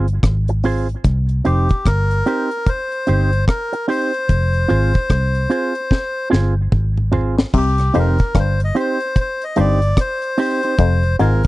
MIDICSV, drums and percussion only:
0, 0, Header, 1, 2, 480
1, 0, Start_track
1, 0, Key_signature, -3, "minor"
1, 0, Tempo, 811030
1, 618, Time_signature, 4, 2, 24, 8
1, 6790, End_track
2, 0, Start_track
2, 0, Title_t, "Drums"
2, 46, Note_on_c, 9, 42, 53
2, 105, Note_off_c, 9, 42, 0
2, 136, Note_on_c, 9, 36, 107
2, 138, Note_on_c, 9, 42, 87
2, 141, Note_on_c, 9, 37, 116
2, 195, Note_off_c, 9, 36, 0
2, 197, Note_off_c, 9, 42, 0
2, 200, Note_off_c, 9, 37, 0
2, 284, Note_on_c, 9, 42, 49
2, 343, Note_off_c, 9, 42, 0
2, 376, Note_on_c, 9, 46, 83
2, 435, Note_off_c, 9, 46, 0
2, 528, Note_on_c, 9, 42, 56
2, 587, Note_off_c, 9, 42, 0
2, 616, Note_on_c, 9, 42, 85
2, 618, Note_on_c, 9, 36, 109
2, 676, Note_off_c, 9, 42, 0
2, 678, Note_off_c, 9, 36, 0
2, 762, Note_on_c, 9, 42, 51
2, 821, Note_off_c, 9, 42, 0
2, 858, Note_on_c, 9, 42, 77
2, 918, Note_off_c, 9, 42, 0
2, 1001, Note_on_c, 9, 42, 54
2, 1010, Note_on_c, 9, 36, 94
2, 1060, Note_off_c, 9, 42, 0
2, 1069, Note_off_c, 9, 36, 0
2, 1098, Note_on_c, 9, 36, 108
2, 1099, Note_on_c, 9, 42, 90
2, 1104, Note_on_c, 9, 37, 104
2, 1157, Note_off_c, 9, 36, 0
2, 1158, Note_off_c, 9, 42, 0
2, 1163, Note_off_c, 9, 37, 0
2, 1248, Note_on_c, 9, 42, 51
2, 1307, Note_off_c, 9, 42, 0
2, 1341, Note_on_c, 9, 42, 63
2, 1400, Note_off_c, 9, 42, 0
2, 1487, Note_on_c, 9, 42, 48
2, 1546, Note_off_c, 9, 42, 0
2, 1577, Note_on_c, 9, 36, 105
2, 1577, Note_on_c, 9, 42, 77
2, 1636, Note_off_c, 9, 36, 0
2, 1636, Note_off_c, 9, 42, 0
2, 1728, Note_on_c, 9, 42, 49
2, 1787, Note_off_c, 9, 42, 0
2, 1816, Note_on_c, 9, 42, 86
2, 1875, Note_off_c, 9, 42, 0
2, 1969, Note_on_c, 9, 42, 59
2, 2028, Note_off_c, 9, 42, 0
2, 2058, Note_on_c, 9, 36, 114
2, 2061, Note_on_c, 9, 42, 84
2, 2064, Note_on_c, 9, 37, 110
2, 2117, Note_off_c, 9, 36, 0
2, 2121, Note_off_c, 9, 42, 0
2, 2123, Note_off_c, 9, 37, 0
2, 2209, Note_on_c, 9, 42, 52
2, 2268, Note_off_c, 9, 42, 0
2, 2299, Note_on_c, 9, 46, 80
2, 2358, Note_off_c, 9, 46, 0
2, 2450, Note_on_c, 9, 42, 54
2, 2510, Note_off_c, 9, 42, 0
2, 2540, Note_on_c, 9, 42, 86
2, 2541, Note_on_c, 9, 36, 100
2, 2599, Note_off_c, 9, 42, 0
2, 2600, Note_off_c, 9, 36, 0
2, 2684, Note_on_c, 9, 42, 47
2, 2743, Note_off_c, 9, 42, 0
2, 2780, Note_on_c, 9, 42, 72
2, 2839, Note_off_c, 9, 42, 0
2, 2923, Note_on_c, 9, 42, 52
2, 2930, Note_on_c, 9, 36, 86
2, 2982, Note_off_c, 9, 42, 0
2, 2990, Note_off_c, 9, 36, 0
2, 3015, Note_on_c, 9, 42, 91
2, 3018, Note_on_c, 9, 36, 115
2, 3020, Note_on_c, 9, 37, 116
2, 3074, Note_off_c, 9, 42, 0
2, 3077, Note_off_c, 9, 36, 0
2, 3079, Note_off_c, 9, 37, 0
2, 3165, Note_on_c, 9, 42, 52
2, 3224, Note_off_c, 9, 42, 0
2, 3258, Note_on_c, 9, 42, 68
2, 3317, Note_off_c, 9, 42, 0
2, 3403, Note_on_c, 9, 42, 46
2, 3462, Note_off_c, 9, 42, 0
2, 3497, Note_on_c, 9, 36, 104
2, 3503, Note_on_c, 9, 38, 57
2, 3556, Note_off_c, 9, 36, 0
2, 3562, Note_off_c, 9, 38, 0
2, 3746, Note_on_c, 9, 38, 64
2, 3805, Note_off_c, 9, 38, 0
2, 3978, Note_on_c, 9, 36, 110
2, 3979, Note_on_c, 9, 45, 85
2, 4037, Note_off_c, 9, 36, 0
2, 4038, Note_off_c, 9, 45, 0
2, 4128, Note_on_c, 9, 45, 66
2, 4187, Note_off_c, 9, 45, 0
2, 4218, Note_on_c, 9, 43, 88
2, 4277, Note_off_c, 9, 43, 0
2, 4371, Note_on_c, 9, 38, 90
2, 4430, Note_off_c, 9, 38, 0
2, 4459, Note_on_c, 9, 49, 101
2, 4461, Note_on_c, 9, 36, 116
2, 4519, Note_off_c, 9, 49, 0
2, 4520, Note_off_c, 9, 36, 0
2, 4605, Note_on_c, 9, 42, 58
2, 4614, Note_on_c, 9, 37, 60
2, 4664, Note_off_c, 9, 42, 0
2, 4673, Note_off_c, 9, 37, 0
2, 4700, Note_on_c, 9, 42, 77
2, 4759, Note_off_c, 9, 42, 0
2, 4844, Note_on_c, 9, 42, 53
2, 4852, Note_on_c, 9, 36, 96
2, 4903, Note_off_c, 9, 42, 0
2, 4912, Note_off_c, 9, 36, 0
2, 4939, Note_on_c, 9, 42, 91
2, 4940, Note_on_c, 9, 36, 117
2, 4944, Note_on_c, 9, 37, 125
2, 4999, Note_off_c, 9, 42, 0
2, 5000, Note_off_c, 9, 36, 0
2, 5003, Note_off_c, 9, 37, 0
2, 5090, Note_on_c, 9, 42, 51
2, 5149, Note_off_c, 9, 42, 0
2, 5186, Note_on_c, 9, 42, 66
2, 5245, Note_off_c, 9, 42, 0
2, 5328, Note_on_c, 9, 42, 52
2, 5387, Note_off_c, 9, 42, 0
2, 5420, Note_on_c, 9, 36, 107
2, 5421, Note_on_c, 9, 42, 89
2, 5480, Note_off_c, 9, 36, 0
2, 5480, Note_off_c, 9, 42, 0
2, 5572, Note_on_c, 9, 42, 49
2, 5631, Note_off_c, 9, 42, 0
2, 5658, Note_on_c, 9, 42, 92
2, 5717, Note_off_c, 9, 42, 0
2, 5811, Note_on_c, 9, 42, 59
2, 5870, Note_off_c, 9, 42, 0
2, 5900, Note_on_c, 9, 36, 112
2, 5901, Note_on_c, 9, 42, 88
2, 5904, Note_on_c, 9, 37, 125
2, 5960, Note_off_c, 9, 36, 0
2, 5960, Note_off_c, 9, 42, 0
2, 5963, Note_off_c, 9, 37, 0
2, 6048, Note_on_c, 9, 42, 51
2, 6107, Note_off_c, 9, 42, 0
2, 6141, Note_on_c, 9, 46, 88
2, 6200, Note_off_c, 9, 46, 0
2, 6290, Note_on_c, 9, 42, 62
2, 6350, Note_off_c, 9, 42, 0
2, 6381, Note_on_c, 9, 42, 96
2, 6384, Note_on_c, 9, 36, 116
2, 6441, Note_off_c, 9, 42, 0
2, 6443, Note_off_c, 9, 36, 0
2, 6529, Note_on_c, 9, 42, 50
2, 6588, Note_off_c, 9, 42, 0
2, 6625, Note_on_c, 9, 42, 80
2, 6684, Note_off_c, 9, 42, 0
2, 6768, Note_on_c, 9, 42, 57
2, 6790, Note_off_c, 9, 42, 0
2, 6790, End_track
0, 0, End_of_file